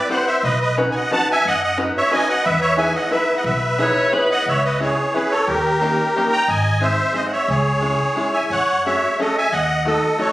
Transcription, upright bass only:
0.43 0.87 B1 loud
1.45 1.88 F#2 medium
2.46 2.88 E2 loud
3.44 3.88 B1 loud
4.46 4.90 C#2 medium
5.47 5.91 D#2 loud
6.48 6.92 G#1 medium
7.48 7.92 C#2 loud
8.50 8.94 F#2 medium
9.52 9.96 D#2 medium

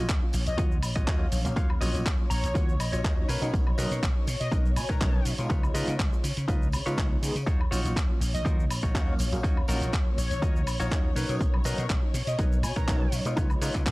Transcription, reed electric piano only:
0.22 0.34 F#3 medium
0.22 0.34 A#3 medium
0.22 0.34 C#4 medium
0.22 0.34 F4 medium
0.58 0.71 F#3 medium
0.58 0.71 A#3 medium
0.58 0.72 C#4 medium
0.58 0.72 F4 loud
1.07 1.42 F#3 medium
1.07 1.42 A#3 medium
1.07 1.42 C#4 medium
1.07 1.42 F5 medium
1.45 1.78 F#3 loud
1.45 1.78 A#3 medium
1.45 1.79 C#4 medium
1.45 1.79 F5 loud
1.81 2.01 F#3 medium
1.81 2.01 A#3 medium
1.81 2.01 C#4 medium
1.81 2.02 F4 medium
2.19 2.30 F#3 medium
2.19 2.30 A#3 medium
2.19 2.31 C#4 medium
2.19 2.31 F4 medium
2.54 2.68 F#3 medium
2.54 2.68 A#3 medium
2.54 2.68 C#4 medium
2.54 2.68 F4 loud
3.04 3.39 F#3 medium
3.04 3.39 A#3 medium
3.04 3.39 C#4 medium
3.04 3.39 D#4 medium
3.41 3.75 F#3 loud
3.41 3.75 C#4 medium
3.41 3.75 D#4 loud
3.78 3.98 F#3 medium
3.78 3.98 A#3 medium
3.78 3.98 C#4 medium
3.78 3.98 D#4 loud
4.15 4.27 F#3 medium
4.15 4.27 A#3 medium
4.15 4.27 C#4 medium
4.15 4.28 D#4 medium
4.51 4.65 F#3 medium
4.51 4.65 A#3 medium
4.51 4.65 C#4 medium
4.51 4.65 D#4 loud
5.01 5.35 F#3 medium
5.01 5.36 C#4 medium
5.01 5.36 D#4 medium
5.38 5.72 G#3 loud
5.38 5.72 B3 medium
5.38 5.72 D#4 medium
5.38 5.72 F4 loud
5.74 5.94 G#3 medium
5.74 5.95 B3 medium
5.74 5.95 D#4 medium
5.74 5.95 F4 medium
6.12 6.24 G#3 medium
6.12 6.24 B3 medium
6.12 6.24 D#4 medium
6.12 6.24 F4 medium
6.48 6.62 G#3 medium
6.48 6.62 B3 medium
6.48 6.62 D#4 medium
6.48 6.62 F4 loud
6.86 7.19 G#3 medium
6.86 7.19 B3 medium
6.86 7.20 D#4 medium
6.86 7.20 F4 medium
7.22 7.35 G#3 medium
7.22 7.36 B3 medium
7.22 7.36 D#4 medium
7.22 7.36 G#4 medium
7.71 7.91 F#3 medium
7.71 7.92 A#3 medium
7.71 7.92 C#4 medium
7.71 7.92 F4 medium
8.09 8.21 F#3 medium
8.09 8.21 A#3 medium
8.09 8.21 C#4 medium
8.09 8.21 F4 medium
8.45 8.58 F#3 medium
8.45 8.59 A#3 medium
8.45 8.59 C#4 medium
8.45 8.59 F4 loud
8.95 9.29 F#3 medium
8.95 9.29 A#3 medium
8.95 9.29 C#4 medium
8.95 9.29 F5 loud
9.32 9.66 F#3 loud
9.32 9.66 A#3 medium
9.32 9.66 C#4 medium
9.32 9.66 F5 loud
9.68 9.88 F#3 medium
9.68 9.88 A#3 medium
9.68 9.89 C#4 medium
9.68 9.89 F4 medium
10.06 10.17 F#3 medium
10.06 10.17 A#3 medium
10.06 10.18 C#4 medium
10.06 10.18 F4 medium
10.42 10.55 F#3 medium
10.42 10.55 A#3 medium
10.42 10.55 C#4 medium
10.42 10.55 F4 loud
10.91 11.26 F#3 medium
10.91 11.26 A#3 medium
10.91 11.26 C#4 medium
10.91 11.26 D#4 loud
11.29 11.62 F#3 loud
11.29 11.62 C#4 medium
11.29 11.63 D#4 loud
11.65 11.85 F#3 medium
11.65 11.85 A#3 medium
11.65 11.85 C#4 medium
11.65 11.85 D#4 medium
12.02 12.14 F#3 medium
12.02 12.14 A#3 medium
12.02 12.14 C#4 medium
12.02 12.14 D#4 medium
12.38 12.52 F#3 medium
12.38 12.52 A#3 medium
12.38 12.52 C#4 medium
12.38 12.52 D#4 loud
12.88 13.22 F#3 medium
12.88 13.23 C#4 medium
12.88 13.23 D#4 loud
13.26 13.59 G#3 loud
13.26 13.59 B3 medium
13.26 13.59 D#4 medium
13.26 13.59 F4 loud
13.62 13.82 G#3 medium
13.62 13.82 B3 medium
13.62 13.82 D#4 medium
13.62 13.82 F4 medium

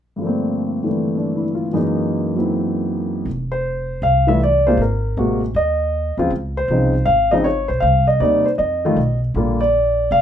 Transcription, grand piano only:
0.16 1.71 G2 soft
0.16 0.81 D3 soft
0.21 1.74 F3 soft
0.21 0.85 A3 soft
0.25 1.73 A#3 soft
0.25 1.76 C4 soft
0.83 1.73 D3 soft
0.83 1.72 E3 soft
0.83 1.74 G3 soft
0.83 1.75 A3 soft
1.17 1.43 D4 soft
1.36 1.65 E4 soft
1.55 1.81 F4 soft
1.73 3.26 F#2 soft
1.73 3.26 E3 soft
1.73 3.26 G#3 soft
1.73 2.35 A#3 soft
1.73 3.27 D#4 soft
2.36 3.25 F#3 soft
2.36 3.26 A#3 soft
2.36 3.26 C4 soft
2.36 3.27 E4 soft
3.52 4.04 C5 medium
4.03 4.28 F5 medium
4.27 4.39 E3 soft
4.27 4.39 G3 soft
4.27 4.40 A3 soft
4.27 4.40 F4 medium
4.27 4.40 E5 medium
4.43 4.68 D5 medium
4.67 4.78 C3 soft
4.67 4.78 G#3 soft
4.67 4.78 A#3 soft
4.67 4.79 F4 medium
4.67 4.80 C5 medium
4.82 5.39 A#4 medium
5.17 5.39 C3 medium
5.17 5.40 G#3 soft
5.17 5.40 A#3 soft
5.17 5.40 F#4 medium
5.56 6.15 D#5 medium
6.18 6.30 C#3 medium
6.18 6.30 F3 medium
6.18 6.30 C4 medium
6.18 6.30 F4 medium
6.57 7.04 C5 medium
6.70 6.92 C#3 soft
6.70 6.92 F3 soft
6.70 6.93 C4 soft
6.70 6.93 D#4 soft
7.06 7.32 F5 medium
7.31 7.44 C#3 medium
7.31 7.44 F3 medium
7.31 7.44 C4 medium
7.31 7.45 D#4 medium
7.31 7.45 D#5 medium
7.44 7.68 C#5 medium
7.68 7.83 C5 medium
7.80 8.05 F5 medium
8.07 8.22 D#5 medium
8.20 8.44 C3 soft
8.20 8.44 G3 soft
8.20 8.44 A#3 soft
8.20 8.44 D#4 medium
8.20 8.44 D5 medium
8.46 8.51 C5 medium
8.58 9.18 D#5 medium
8.85 8.97 D#3 medium
8.85 8.97 G3 soft
8.85 8.97 A3 medium
8.85 8.97 F4 medium
9.36 9.58 D3 soft
9.36 9.59 G3 soft
9.36 9.59 A#3 soft
9.36 9.59 F4 medium
9.61 10.14 D5 medium
10.12 10.22 F5 medium

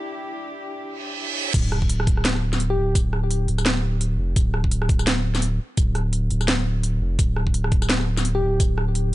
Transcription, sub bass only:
1.54 2.06 D1 loud
2.07 2.77 D1 loud
2.77 2.94 D1 medium
2.95 3.47 D1 loud
3.48 4.18 D1 loud
4.18 4.35 F1 medium
4.36 4.88 D1 loud
4.89 5.59 D1 loud
5.77 6.30 D1 loud
6.31 7.00 D1 loud
7.01 7.18 F1 medium
7.19 7.71 D1 loud
7.72 8.41 D1 loud
8.42 8.59 D1 medium
8.60 9.12 D1 loud

